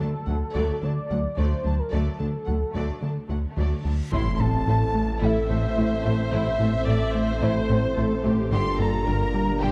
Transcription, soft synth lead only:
0.00 0.85 A4 loud
0.83 1.39 D5 loud
1.37 1.80 C5 medium
1.79 1.91 A#4 medium
1.91 3.81 A4 medium
4.13 4.41 C6 loud
4.39 5.26 A5 loud
5.24 6.33 E5 loud
6.33 7.44 E5 loud
7.42 8.52 C5 loud
8.53 8.82 C6 loud
8.81 9.64 A#5 loud
9.62 9.72 G5 loud

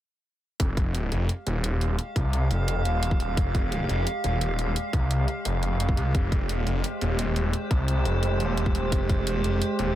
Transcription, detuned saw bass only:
0.60 1.10 F1 loud
1.12 1.28 F1 loud
1.46 1.97 D#1 loud
2.16 2.49 C2 medium
2.51 2.84 F1 loud
2.85 3.36 D#1 loud
3.37 3.88 F1 loud
3.89 4.05 F1 loud
4.24 4.75 D#1 medium
4.93 5.27 C2 medium
5.45 5.96 F1 loud
5.97 6.13 C2 loud
6.15 6.65 F1 medium
6.67 6.83 F1 loud
7.01 7.52 D#1 loud
7.71 8.04 C2 medium
8.05 8.39 F1 loud
8.40 8.91 D#1 medium
8.92 9.43 F1 loud
9.44 9.60 F1 loud
9.79 9.95 D#1 loud

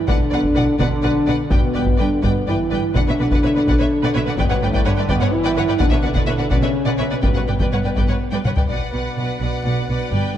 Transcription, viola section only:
0.07 0.15 B4 medium
0.32 0.40 B4 medium
0.55 0.63 B4 soft
0.79 0.87 B4 medium
1.03 1.11 B4 medium
1.27 1.35 B4 medium
1.51 1.59 B4 soft
1.74 1.82 B4 soft
1.98 2.06 B4 soft
2.23 2.31 B4 soft
2.47 2.55 B4 soft
2.71 2.79 B4 soft
2.94 2.99 B4 medium
3.07 3.12 B4 soft
3.19 3.24 B4 soft
3.31 3.35 B4 medium
3.43 3.47 B4 soft
3.55 3.60 B4 soft
3.67 3.72 B4 soft
3.79 3.84 B4 soft
4.03 4.07 B4 medium
4.14 4.19 B4 medium
4.25 4.30 B4 medium
4.38 4.43 B4 medium
4.50 4.55 B4 medium
4.62 4.67 B4 soft
4.73 4.78 B4 medium
4.86 4.91 B4 medium
4.97 5.01 B4 medium
5.09 5.14 B4 medium
5.21 5.25 B4 medium
5.44 5.49 B4 medium
5.56 5.61 B4 medium
5.68 5.73 B4 medium
5.80 5.85 B4 medium
5.92 5.97 B4 soft
6.03 6.08 B4 medium
6.15 6.20 B4 medium
6.28 6.33 B4 soft
6.40 6.45 B4 soft
6.51 6.56 B4 medium
6.63 6.68 B4 soft
6.87 6.92 B4 medium
6.99 7.04 B4 soft
7.11 7.16 B4 soft
7.23 7.28 B4 medium
7.36 7.41 B4 soft
7.47 7.52 B4 soft
7.61 7.66 B4 medium
7.73 7.77 B4 soft
7.85 7.90 B4 soft
7.97 8.02 B4 medium
8.09 8.14 B4 soft
8.34 8.38 B4 soft
8.46 8.51 B4 soft
8.57 8.62 B4 soft
8.69 8.92 B4 soft
8.93 9.17 B4 soft
9.18 9.41 B4 soft
9.42 9.64 B4 soft
9.65 9.88 B4 soft
9.89 10.11 B4 soft
10.12 10.35 B4 soft

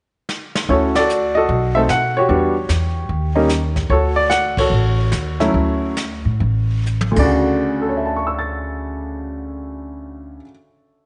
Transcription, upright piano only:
0.69 0.93 A3 soft
0.69 0.93 C#4 soft
0.69 0.93 E4 soft
0.69 0.94 F#4 medium
0.69 0.97 A4 medium
0.69 0.76 C#5 medium
0.96 1.36 F#4 medium
0.96 1.36 A4 medium
0.96 1.37 D5 medium
1.35 2.13 F#4 medium
1.35 1.76 A4 medium
1.35 1.73 D#5 medium
1.75 1.88 A3 medium
1.75 1.88 C4 medium
1.75 1.88 D#4 medium
1.75 1.88 A4 medium
1.75 1.80 E5 medium
1.90 2.15 F#5 medium
2.17 2.27 F#4 medium
2.17 3.74 G4 medium
2.17 3.73 C#5 medium
2.29 2.53 G3 medium
2.29 2.53 B3 medium
2.29 2.54 D4 medium
2.29 2.53 F#4 medium
3.35 3.48 G3 medium
3.35 3.48 A#3 medium
3.35 3.48 C#4 medium
3.35 3.48 D#4 medium
3.90 4.58 F#4 medium
3.90 4.58 A4 medium
3.90 4.15 C#5 medium
4.16 4.29 D5 medium
4.30 4.58 F#5 medium
4.59 6.83 F#4 soft
4.59 6.83 A4 medium
4.59 6.83 C#5 medium
5.40 5.94 F#3 medium
5.40 5.94 A3 medium
5.40 5.94 C#4 medium
5.40 5.94 E4 medium
7.11 10.37 D2 medium
7.16 10.45 C#3 medium
7.16 10.41 D3 soft
7.16 10.41 D5 medium
7.23 10.48 F#4 medium
7.82 11.03 A4 soft
7.89 11.06 C#5 soft
7.97 11.06 E5 soft
8.06 11.06 A5 soft
8.16 11.06 C#6 soft
8.27 11.06 E6 soft
8.39 11.06 A6 soft

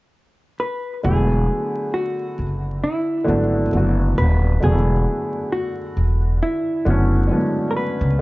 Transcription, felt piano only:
1.03 2.41 D3 medium
1.03 2.41 F#3 medium
1.03 2.42 A3 medium
1.03 2.43 B3 medium
1.08 2.43 E4 medium
3.24 3.61 D3 medium
3.24 3.62 F#3 medium
3.24 3.63 A3 medium
3.24 3.63 B3 medium
3.29 3.64 D4 medium
3.72 4.43 D3 medium
3.72 4.44 F#3 medium
3.72 4.44 A3 medium
3.72 4.45 B3 medium
3.77 4.46 F#4 medium
4.60 5.98 D3 medium
4.60 5.99 F#3 medium
4.60 5.99 A3 medium
4.60 6.00 B3 medium
4.65 4.71 D4 medium
4.72 6.04 E4 medium
6.85 7.21 D3 medium
6.85 7.22 F#3 medium
6.85 7.22 A3 medium
6.85 7.23 B3 medium
6.90 7.24 C#4 medium
7.27 8.00 D3 medium
7.27 8.00 F#3 medium
7.27 7.38 G#3 soft
7.27 8.02 B3 medium
7.33 8.04 A3 medium
7.33 8.02 D4 medium

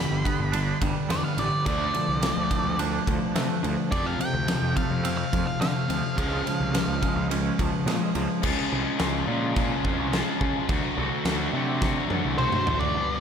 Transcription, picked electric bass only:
0.11 0.22 G1 medium
0.39 0.72 G1 medium
0.82 0.93 G1 medium
1.10 1.21 E2 medium
1.37 1.49 A1 medium
1.66 1.88 D2 medium
2.08 2.30 C2 medium
2.37 2.48 D2 medium
2.65 2.98 D2 medium
3.07 3.18 D2 medium
3.35 3.47 C3 medium
3.64 3.75 D2 medium
3.92 4.14 F2 loud
4.34 4.56 D2 medium
4.62 4.73 F2 medium
4.90 5.23 F2 medium
5.33 5.44 F2 medium
5.61 5.72 D3 medium
5.89 6.01 D2 medium
6.18 6.40 C#2 medium
6.60 6.82 C2 medium
6.87 6.99 C#2 medium
7.16 7.49 C#2 medium
7.59 7.70 C#2 medium
7.86 7.98 A#2 loud
8.15 8.26 C#2 medium
8.43 8.54 C#2 loud
8.72 8.83 C2 medium
9.00 9.22 C#2 medium
9.27 9.71 A#2 medium
9.84 9.96 F2 medium
9.99 10.21 C2 medium
10.41 10.52 C#3 loud
10.69 10.80 D2 loud
10.98 11.09 C2 loud
11.25 11.47 D2 medium
11.53 11.97 C3 medium
12.10 12.21 F#2 medium
12.25 12.47 C2 medium
12.67 12.78 A1 loud

